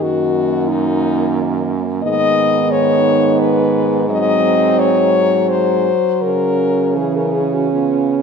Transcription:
Already playing: D#3
0.00 F#2 A#3 F#4
0.69 D#4
2.03 G#2 D#3 B3 D#5
2.71 C#5
3.40 B4
4.09 F#3 C4 D#5
4.79 C#5
5.50 C5
6.21 C#3 C#4 A#4
6.97 E3 G#4
7.16 A#4
7.33 G#4
7.54 F#4
7.72 B3 F4

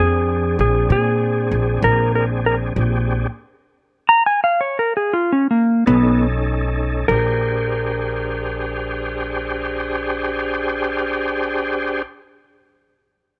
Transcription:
Already playing: F2 C4 D4 G#4
0.00 G#4
0.59 A#1 G#4
0.90 A#2 G#4
1.51 A#1
1.82 A#1 A#4
2.15 A#4
2.46 A#4
2.76 A#1 C4 D4 G4 G#4
4.09 A#5
4.26 G#5
4.44 F5
4.61 C#5
4.79 A#4
4.97 G#4
5.13 F4
5.32 C#4
5.51 A#3
5.86 B1 B3 C#4 D#4 A4
7.08 A#1 D4 G4 G#4 A#4 C5

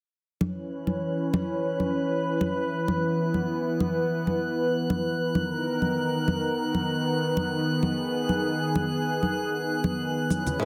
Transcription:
0.40 E3 C#4 B4 F#6, high conga
0.87 high conga
1.34 high conga
1.80 high conga
2.41 high conga
2.88 B3, high conga
3.34 high conga
3.80 high conga
4.27 high conga
4.90 high conga
5.34 D#3 B3 A#4, high conga
5.82 high conga
6.28 high conga
6.75 high conga
7.37 high conga
7.82 G#4, high conga
8.29 high conga
8.75 high conga
9.23 high conga
9.84 high conga
10.30 E3 C#4 B4, high conga, shaker
10.47 low conga, shaker
10.60 G#3 C#4 E4

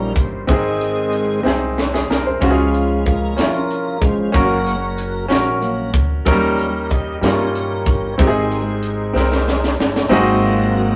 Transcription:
Already playing: A#1 G2 F3 F#3 G3 A#3 C#4 D#4 A#4 C5
0.14 G1 C5, kick, closed hi-hat
0.47 G#1 G#2 D#3 G#3 C4 D#4 G#4 C5 D#5, kick, closed hi-hat
0.81 closed hi-hat
1.13 closed hi-hat
1.43 C2 C4 D#4 G#4, snare
1.78 snare
1.94 G#4, snare
2.09 C2 A#4, snare
2.26 C5
2.41 C#2 C#3 F3 G#3 C#4 F4 F#4, kick, closed hi-hat
2.51 G#4
2.74 closed hi-hat
3.06 C#4 F4 A#4, kick, closed hi-hat
3.37 F2 C#4 E4 A#4, snare, closed hi-hat
3.45 F4
3.71 closed hi-hat
4.01 F1 F3 G#3 C#4 C5, kick, closed hi-hat
4.32 F#1 F#3 A#3 C#4 F#4 A#4 C#5, kick, closed hi-hat
4.67 closed hi-hat
4.98 closed hi-hat
5.28 A#1 C#4 F#4 A#4, snare, closed hi-hat
5.61 F#3 A#3 C#4, closed hi-hat
5.93 D2, kick, closed hi-hat
6.25 D#2 D#3 F3 F#3 G3 A#3 C#4 D#4 G4 A#4, kick, closed hi-hat
6.32 G3
6.59 closed hi-hat
6.90 D#5, kick, closed hi-hat
7.21 G2 G3 A#3 C#4 D#4 F4 G4 A#4 C#5, snare, closed hi-hat
7.55 closed hi-hat
7.86 G1, kick, closed hi-hat
8.13 C#5
8.18 G#1 G#2 D#3 G#3 C4 D#4 G4 G#4 C5, kick, closed hi-hat
8.27 G#4
8.51 closed hi-hat
8.83 closed hi-hat
9.13 C2 C4 D#4 A#4, snare
9.32 snare
9.48 snare
9.64 snare
9.78 G1, snare
9.96 snare
10.09 G#1 G#2 F#3 A#3 C4 D#4 F#4 G#4 D#5
10.43 F4
10.76 F#4

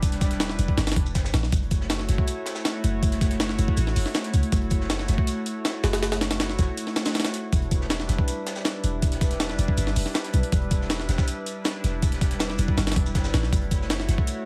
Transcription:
Already playing: E1
0.02 G3 D4 E4 B4, kick, closed hi-hat, shaker
0.12 snare, closed hi-hat
0.21 kick, snare, closed hi-hat, shaker
0.31 snare, closed hi-hat
0.40 snare, closed hi-hat, shaker
0.49 snare
0.59 E1, closed hi-hat, shaker
0.68 kick, closed hi-hat
0.77 G1, snare, closed hi-hat, shaker
0.87 snare, closed hi-hat, shaker
0.92 snare, closed hi-hat
0.96 E1, kick, closed hi-hat
1.06 shaker
1.15 G1, kick, snare, closed hi-hat, shaker
1.25 snare, shaker
1.34 A1, snare, closed hi-hat, shaker
1.43 B1, snare
1.52 F#1 A3 E4 F#4 C#5, kick, closed hi-hat, shaker
1.63 closed hi-hat
1.71 kick, closed hi-hat, shaker
1.81 snare
1.90 snare, closed hi-hat, shaker
1.99 snare
2.09 F#1, snare, closed hi-hat, shaker
2.18 kick
2.27 closed hi-hat, shaker
2.46 snare, closed hi-hat, shaker
2.55 snare, shaker
2.65 snare, closed hi-hat, shaker
2.84 F#1, closed hi-hat, shaker
3.03 A3 E4 F#4 C#5, kick, closed hi-hat, shaker
3.11 snare, closed hi-hat
3.21 kick, snare, closed hi-hat, shaker
3.31 snare, closed hi-hat
3.40 snare, closed hi-hat, shaker
3.49 snare
3.59 F#1, closed hi-hat, shaker
3.68 kick
3.77 A1, closed hi-hat, shaker
3.87 snare, closed hi-hat
3.96 F#1, open hi-hat, shaker
4.06 snare
4.14 snare, closed hi-hat, shaker
4.24 snare, closed hi-hat
4.34 C#2, closed hi-hat, shaker
4.43 closed hi-hat
4.52 F#1 A3 E4 F#4 C#5, kick, closed hi-hat, shaker
4.62 closed hi-hat
4.70 kick, closed hi-hat, shaker
4.81 snare
4.90 snare, closed hi-hat, shaker
4.99 snare
5.08 F#1, snare, closed hi-hat, shaker
5.18 kick
5.27 closed hi-hat, shaker
5.46 closed hi-hat, shaker
5.65 snare, closed hi-hat, shaker
5.84 F#1, snare, closed hi-hat, shaker
5.93 snare, closed hi-hat
6.03 A3 E4 F#4 C#5, snare, closed hi-hat, shaker
6.12 snare, closed hi-hat
6.21 snare, closed hi-hat, shaker
6.31 snare, closed hi-hat
6.40 snare, closed hi-hat, shaker
6.49 snare
6.59 F#1, kick, snare, closed hi-hat, shaker
6.77 closed hi-hat, shaker
6.87 snare, closed hi-hat
6.96 snare, closed hi-hat, shaker
7.05 snare, closed hi-hat, shaker
7.14 snare, closed hi-hat, shaker
7.20 snare, closed hi-hat
7.25 snare, closed hi-hat, shaker
7.33 snare, closed hi-hat, shaker
7.53 E1 G3 D4 E4 B4, kick, closed hi-hat, shaker
7.62 closed hi-hat
7.71 kick, closed hi-hat, shaker
7.81 snare
7.90 snare, closed hi-hat, shaker
8.00 snare
8.08 E1, snare, closed hi-hat, shaker
8.18 kick
8.28 closed hi-hat, shaker
8.46 snare, closed hi-hat, shaker
8.55 snare, shaker
8.65 snare, closed hi-hat, shaker
8.84 E1, closed hi-hat, shaker
9.02 G3 D4 E4 B4, kick, closed hi-hat, shaker
9.12 snare, closed hi-hat
9.21 kick, snare, closed hi-hat, shaker
9.31 snare, closed hi-hat
9.40 snare, closed hi-hat, shaker
9.50 snare
9.59 E1, closed hi-hat, shaker
9.68 kick
9.77 G1, closed hi-hat, shaker
9.87 snare, closed hi-hat
9.96 E1, open hi-hat, shaker
10.06 snare
10.14 snare, closed hi-hat, shaker
10.24 snare, closed hi-hat
10.33 B1, closed hi-hat, shaker
10.43 closed hi-hat
10.52 E1 G3 D4 E4 B4, kick, closed hi-hat, shaker
10.62 closed hi-hat
10.71 kick, closed hi-hat, shaker
10.81 snare
10.90 snare, closed hi-hat, shaker
11.00 snare
11.09 E1, snare, closed hi-hat, shaker
11.18 kick, snare, shaker
11.28 closed hi-hat, shaker
11.46 closed hi-hat, shaker
11.65 snare, closed hi-hat, shaker
11.84 E1, snare, closed hi-hat, shaker
12.02 G3 D4 E4 B4, kick, closed hi-hat, shaker
12.12 snare, closed hi-hat
12.21 kick, snare, closed hi-hat, shaker
12.31 snare, closed hi-hat
12.40 snare, closed hi-hat, shaker
12.50 snare
12.58 E1, closed hi-hat, shaker
12.68 kick, closed hi-hat
12.77 G1, snare, closed hi-hat, shaker
12.87 snare, closed hi-hat, shaker
12.92 snare, closed hi-hat
12.96 E1, kick, closed hi-hat
13.06 shaker
13.15 G1, kick, snare, closed hi-hat, shaker
13.24 snare, shaker
13.33 A1, snare, closed hi-hat, shaker
13.43 B1, snare
13.52 F#1 A3 E4 F#4 C#5, kick, closed hi-hat, shaker
13.61 closed hi-hat
13.71 kick, closed hi-hat, shaker
13.81 snare
13.90 snare, closed hi-hat, shaker
13.99 snare
14.09 F#1, snare, closed hi-hat, shaker
14.18 kick
14.27 closed hi-hat, shaker

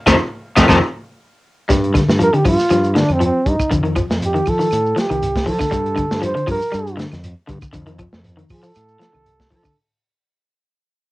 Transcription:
0.06 F2 C3 D#3 F3 A3, kick, snare, claves, shekere
0.56 F2 C3 D#3 F3 A3, kick, snare, claves, shekere
0.68 F2 C3 D#3 F3 A3, kick, snare, claves, shekere
1.69 G2 G3, kick, snare, closed hi-hat, shekere
1.84 closed hi-hat
1.94 D3, kick, snare, closed hi-hat, claves, shekere
2.09 G2, snare, shekere
2.19 F3, closed hi-hat, shekere
2.24 A#4
2.33 D3 G4, closed hi-hat
2.45 G2 F3 F4, kick, open hi-hat, claves, shekere
2.59 snare, shekere
2.70 G2 F3, snare, closed hi-hat, claves, shekere
2.84 closed hi-hat, shekere
2.95 D3 D4, snare, closed hi-hat, shekere
3.09 F2 C4, closed hi-hat, claves
3.20 F3, closed hi-hat, shekere
3.25 C4
3.46 G2 D#4, kick, closed hi-hat, shekere
3.59 kick, claves, shekere
3.71 F2 D3, kick, closed hi-hat, shekere
3.83 D#3, closed hi-hat
3.96 F3, kick, closed hi-hat, claves, shekere
4.10 F2, snare, shekere
4.21 closed hi-hat, shekere
4.25 G4
4.34 D#3, closed hi-hat
4.46 F3 A4, kick, open hi-hat, claves, shekere
4.59 D#3, shekere
4.71 A2, closed hi-hat, claves, shekere
4.86 shekere
4.96 F3 G4, snare, closed hi-hat, shekere
5.09 C2 D#3, closed hi-hat, claves
5.23 closed hi-hat, shekere
5.36 kick, snare, closed hi-hat
5.46 F3 A4, kick, open hi-hat, shekere
5.59 D3, kick, snare, claves, shekere
5.71 G2 G3, kick, closed hi-hat, shekere
5.86 closed hi-hat
5.96 D3, kick, closed hi-hat, claves, shekere
6.11 G2, snare, shekere
6.22 F3 C5, closed hi-hat, shekere
6.35 D3, closed hi-hat
6.47 G2 F3 A#4, kick, open hi-hat, claves, shekere
6.62 shekere
6.72 G2 G3, closed hi-hat, claves, shekere
6.87 closed hi-hat, shekere
6.97 D3, snare, closed hi-hat, shekere
7.12 F2, snare, closed hi-hat, claves
7.24 closed hi-hat, shekere
7.48 G2 D3, kick, closed hi-hat, shekere
7.62 muted fingered electric bass stroke, kick, claves, shekere
7.73 F2 D3, kick, closed hi-hat, shekere
7.87 D#3, closed hi-hat
7.99 F3, kick, closed hi-hat, claves, shekere
8.13 F2, snare, shekere
8.24 closed hi-hat, shekere
8.37 D#3, closed hi-hat
8.49 F3 A4, kick, open hi-hat, claves, shekere
8.63 F3, shekere
8.75 A2, closed hi-hat, claves, shekere
8.89 shekere
8.99 F3, snare, closed hi-hat, shekere
9.13 C2 D#3, closed hi-hat, claves
9.26 closed hi-hat, shekere
9.40 kick, snare, closed hi-hat
9.50 F3, kick, open hi-hat, shekere
9.55 A4
9.63 D3, kick, claves, shekere

